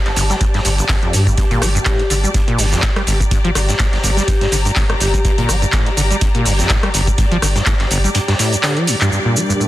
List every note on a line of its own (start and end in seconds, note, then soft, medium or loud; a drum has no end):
0.00 9.68 G4 medium
0.00 9.68 D5 medium
0.00 3.16 A5 medium
0.05 0.12 G1 medium
0.05 snare medium
0.05 clap soft
0.05 closed hi-hat soft
0.16 0.24 G1 loud
0.16 0.33 G1 medium
0.16 closed hi-hat medium
0.16 open hi-hat loud
0.16 shaker medium
0.30 0.36 G3 medium
0.30 snare soft
0.30 closed hi-hat soft
0.30 shaker soft
0.40 0.45 G2 loud
0.40 kick loud
0.40 closed hi-hat medium
0.40 shaker soft
0.54 0.60 G2 loud
0.54 snare medium
0.54 closed hi-hat soft
0.65 0.81 G1 loud
0.65 0.69 G2 medium
0.65 closed hi-hat medium
0.65 open hi-hat loud
0.65 shaker medium
0.78 0.84 G1 medium
0.78 closed hi-hat soft
0.78 shaker soft
0.89 0.97 F2 medium
0.89 kick loud
0.89 snare loud
0.89 clap loud
0.89 closed hi-hat medium
0.89 open hi-hat medium
0.89 shaker soft
1.03 1.15 F2 medium
1.03 closed hi-hat soft
1.13 1.29 G2 medium
1.13 1.24 G2 medium
1.13 snare soft
1.13 closed hi-hat medium
1.13 open hi-hat loud
1.13 shaker medium
1.27 1.36 G2 medium
1.27 kick medium
1.27 closed hi-hat soft
1.27 shaker soft
1.38 1.45 G2 medium
1.38 kick loud
1.38 closed hi-hat medium
1.38 shaker soft
1.51 1.58 G1 loud
1.51 1.63 A#2 loud
1.51 closed hi-hat soft
1.62 1.78 G1 loud
1.62 1.69 G3 medium
1.62 cross-stick medium
1.62 closed hi-hat medium
1.62 open hi-hat loud
1.62 shaker medium
1.75 1.79 G2 loud
1.75 closed hi-hat soft
1.75 shaker soft
1.86 2.01 A2 medium
1.86 2.06 G4 medium
1.86 kick loud
1.86 snare loud
1.86 clap loud
1.86 closed hi-hat medium
1.86 shaker soft
1.99 2.03 G2 medium
1.99 closed hi-hat soft
2.10 2.26 G1 loud
2.10 2.15 D3 medium
2.10 closed hi-hat medium
2.10 open hi-hat loud
2.10 shaker medium
2.24 2.29 G3 medium
2.24 closed hi-hat soft
2.24 shaker soft
2.34 2.42 G2 medium
2.34 kick loud
2.34 closed hi-hat medium
2.34 shaker soft
2.48 2.60 A#2 loud
2.48 closed hi-hat soft
2.59 2.75 G1 loud
2.59 2.66 G2 medium
2.59 open hi-hat loud
2.59 open hi-hat medium
2.59 shaker medium
2.71 2.81 F2 medium
2.71 snare soft
2.71 closed hi-hat soft
2.71 shaker soft
2.82 kick loud
2.82 snare loud
2.82 clap loud
2.82 closed hi-hat medium
2.82 shaker soft
2.96 3.02 G3 medium
2.96 cross-stick medium
2.96 closed hi-hat soft
3.01 9.12 A#5 medium
3.07 3.14 G1 loud
3.07 3.23 G1 medium
3.07 closed hi-hat medium
3.07 open hi-hat loud
3.07 shaker medium
3.20 3.24 G2 medium
3.20 kick medium
3.20 closed hi-hat soft
3.20 shaker soft
3.31 3.38 G2 medium
3.31 kick loud
3.31 closed hi-hat medium
3.31 shaker soft
3.44 3.51 G1 loud
3.44 3.50 F3 loud
3.44 closed hi-hat soft
3.55 3.71 G1 loud
3.55 3.60 D3 medium
3.55 cross-stick medium
3.55 closed hi-hat medium
3.55 open hi-hat loud
3.55 shaker medium
3.69 3.75 G2 loud
3.69 snare medium
3.69 closed hi-hat soft
3.69 shaker soft
3.79 3.87 A2 medium
3.79 kick loud
3.79 snare loud
3.79 clap loud
3.79 closed hi-hat medium
3.79 shaker soft
3.92 3.99 G1 medium
3.92 snare medium
3.92 clap soft
3.92 closed hi-hat soft
4.03 4.11 G1 loud
4.03 4.20 G1 medium
4.03 closed hi-hat medium
4.03 open hi-hat loud
4.03 shaker medium
4.17 4.23 G3 medium
4.17 4.24 G4 medium
4.17 snare soft
4.17 closed hi-hat soft
4.17 shaker soft
4.28 4.32 G2 loud
4.28 4.36 G4 medium
4.28 kick loud
4.28 closed hi-hat loud
4.28 closed hi-hat medium
4.28 shaker soft
4.41 4.47 G2 loud
4.41 snare medium
4.41 closed hi-hat soft
4.52 4.68 G1 loud
4.52 4.56 D3 medium
4.52 closed hi-hat medium
4.52 open hi-hat loud
4.52 shaker medium
4.65 4.71 G2 loud
4.65 closed hi-hat soft
4.65 shaker soft
4.76 4.84 A2 medium
4.76 kick loud
4.76 snare loud
4.76 clap loud
4.76 closed hi-hat medium
4.76 open hi-hat medium
4.76 shaker soft
4.90 4.96 G1 medium
4.90 cross-stick medium
4.90 closed hi-hat soft
5.00 5.08 G1 loud
5.00 5.17 G1 medium
5.00 5.09 G4 medium
5.00 snare soft
5.00 closed hi-hat medium
5.00 open hi-hat loud
5.00 shaker medium
5.14 5.20 G3 medium
5.14 5.21 G4 medium
5.14 kick medium
5.14 closed hi-hat soft
5.14 shaker soft
5.24 5.32 G2 medium
5.24 kick loud
5.24 closed hi-hat medium
5.24 shaker soft
5.38 5.45 G1 loud
5.38 5.50 A#2 loud
5.38 closed hi-hat soft
5.49 5.65 G1 loud
5.49 5.56 G3 medium
5.49 cross-stick medium
5.49 closed hi-hat medium
5.49 open hi-hat loud
5.49 shaker medium
5.62 5.66 G2 loud
5.62 closed hi-hat soft
5.62 shaker soft
5.72 5.88 A2 medium
5.72 kick loud
5.72 snare loud
5.72 clap loud
5.72 closed hi-hat medium
5.72 shaker soft
5.86 5.90 G2 medium
5.86 closed hi-hat soft
5.97 6.13 G1 medium
5.97 6.02 D3 medium
5.97 closed hi-hat medium
5.97 open hi-hat loud
5.97 shaker medium
6.11 6.17 G3 medium
6.11 closed hi-hat soft
6.11 shaker soft
6.21 6.29 G2 medium
6.21 kick loud
6.21 closed hi-hat medium
6.21 shaker soft
6.35 6.47 A#2 loud
6.35 closed hi-hat soft
6.46 6.62 G1 loud
6.46 6.53 G2 medium
6.46 open hi-hat loud
6.46 open hi-hat medium
6.46 shaker medium
6.59 6.68 F2 medium
6.59 snare medium
6.59 closed hi-hat soft
6.59 shaker soft
6.69 6.77 A2 medium
6.69 kick loud
6.69 snare loud
6.69 clap loud
6.69 closed hi-hat medium
6.69 shaker soft
6.83 6.89 G3 medium
6.83 cross-stick medium
6.83 closed hi-hat soft
6.94 7.01 G1 loud
6.94 7.10 G1 medium
6.94 closed hi-hat medium
6.94 open hi-hat loud
6.94 shaker medium
7.07 7.11 G2 medium
7.07 kick medium
7.07 closed hi-hat soft
7.07 shaker soft
7.18 7.26 G2 medium
7.18 kick loud
7.18 closed hi-hat loud
7.18 closed hi-hat medium
7.18 shaker soft
7.31 7.38 G1 loud
7.31 7.37 F3 loud
7.31 closed hi-hat soft
7.42 7.58 G1 loud
7.42 7.47 D3 medium
7.42 cross-stick medium
7.42 closed hi-hat medium
7.42 open hi-hat loud
7.42 shaker medium
7.55 7.62 G2 loud
7.55 snare medium
7.55 closed hi-hat soft
7.55 shaker soft
7.66 7.74 A2 medium
7.66 kick loud
7.66 snare loud
7.66 clap loud
7.66 closed hi-hat loud
7.66 closed hi-hat medium
7.66 shaker soft
7.79 7.86 G1 medium
7.79 snare medium
7.79 clap soft
7.79 closed hi-hat soft
7.91 7.98 G1 loud
7.91 8.07 G1 loud
7.91 closed hi-hat medium
7.91 open hi-hat loud
7.91 shaker medium
8.04 8.10 G3 medium
8.04 closed hi-hat soft
8.04 shaker soft
8.14 8.19 G2 loud
8.14 closed hi-hat medium
8.14 closed hi-hat loud
8.14 shaker soft
8.28 8.34 G2 loud
8.28 snare medium
8.28 closed hi-hat soft
8.39 8.54 A2 medium
8.39 closed hi-hat medium
8.39 open hi-hat loud
8.39 shaker medium
8.52 8.56 F2 medium
8.52 closed hi-hat soft
8.52 shaker soft
8.63 8.78 D3 medium
8.63 snare medium
8.63 clap loud
8.63 closed hi-hat medium
8.63 open hi-hat medium
8.63 shaker soft
8.77 8.89 F3 loud
8.77 closed hi-hat soft
8.87 8.95 G2 loud
8.87 closed hi-hat medium
8.87 open hi-hat loud
8.87 shaker medium
9.01 9.10 G2 loud
9.01 clap medium
9.01 closed hi-hat soft
9.01 shaker soft
9.12 9.19 G2 medium
9.12 9.68 G3 medium
9.12 9.68 D4 medium
9.12 9.68 A#4 medium
9.12 9.68 D5 medium
9.12 shaker soft
9.25 9.38 A#2 loud
9.36 9.43 G3 medium
9.36 shaker medium
9.49 9.53 G2 loud
9.49 shaker soft
9.60 9.68 A2 medium
9.60 shaker soft